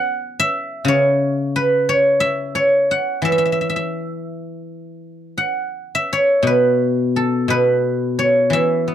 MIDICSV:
0, 0, Header, 1, 2, 480
1, 0, Start_track
1, 0, Tempo, 672646
1, 384, Time_signature, 4, 2, 24, 8
1, 2796, Tempo, 718563
1, 5196, Tempo, 683371
1, 6205, End_track
2, 0, Start_track
2, 0, Title_t, "Guzheng"
2, 0, Program_c, 0, 107
2, 0, Note_on_c, 0, 71, 52
2, 0, Note_on_c, 0, 78, 104
2, 151, Note_off_c, 0, 71, 0
2, 282, Note_on_c, 0, 76, 112
2, 603, Note_on_c, 0, 49, 72
2, 629, Note_on_c, 0, 73, 94
2, 1078, Note_off_c, 0, 78, 0
2, 1112, Note_on_c, 0, 71, 90
2, 1345, Note_off_c, 0, 73, 0
2, 1348, Note_on_c, 0, 73, 97
2, 1511, Note_off_c, 0, 76, 0
2, 1572, Note_on_c, 0, 76, 103
2, 1817, Note_off_c, 0, 73, 0
2, 1820, Note_on_c, 0, 73, 81
2, 2064, Note_off_c, 0, 49, 0
2, 2077, Note_on_c, 0, 78, 91
2, 2296, Note_on_c, 0, 52, 65
2, 2315, Note_off_c, 0, 76, 0
2, 2318, Note_on_c, 0, 76, 83
2, 2366, Note_off_c, 0, 76, 0
2, 2369, Note_on_c, 0, 76, 64
2, 2409, Note_off_c, 0, 76, 0
2, 2412, Note_on_c, 0, 76, 69
2, 2462, Note_off_c, 0, 76, 0
2, 2465, Note_on_c, 0, 76, 50
2, 2511, Note_off_c, 0, 76, 0
2, 2513, Note_on_c, 0, 76, 62
2, 2572, Note_off_c, 0, 71, 0
2, 2573, Note_off_c, 0, 76, 0
2, 2576, Note_on_c, 0, 76, 49
2, 2634, Note_off_c, 0, 76, 0
2, 2637, Note_on_c, 0, 76, 62
2, 2680, Note_off_c, 0, 76, 0
2, 2683, Note_on_c, 0, 76, 58
2, 3156, Note_off_c, 0, 73, 0
2, 3194, Note_off_c, 0, 78, 0
2, 3744, Note_off_c, 0, 52, 0
2, 3770, Note_on_c, 0, 78, 82
2, 3841, Note_off_c, 0, 76, 0
2, 4152, Note_on_c, 0, 76, 95
2, 4271, Note_on_c, 0, 73, 89
2, 4471, Note_on_c, 0, 47, 70
2, 4500, Note_on_c, 0, 71, 81
2, 4841, Note_off_c, 0, 78, 0
2, 4963, Note_on_c, 0, 69, 75
2, 5168, Note_off_c, 0, 47, 0
2, 5176, Note_on_c, 0, 47, 57
2, 5188, Note_off_c, 0, 71, 0
2, 5190, Note_on_c, 0, 71, 95
2, 5308, Note_off_c, 0, 76, 0
2, 5563, Note_off_c, 0, 73, 0
2, 5671, Note_on_c, 0, 73, 85
2, 5890, Note_on_c, 0, 52, 63
2, 5901, Note_off_c, 0, 47, 0
2, 5913, Note_on_c, 0, 76, 85
2, 6155, Note_on_c, 0, 59, 45
2, 6205, Note_off_c, 0, 52, 0
2, 6205, Note_off_c, 0, 59, 0
2, 6205, Note_off_c, 0, 69, 0
2, 6205, Note_off_c, 0, 71, 0
2, 6205, Note_off_c, 0, 73, 0
2, 6205, Note_off_c, 0, 76, 0
2, 6205, End_track
0, 0, End_of_file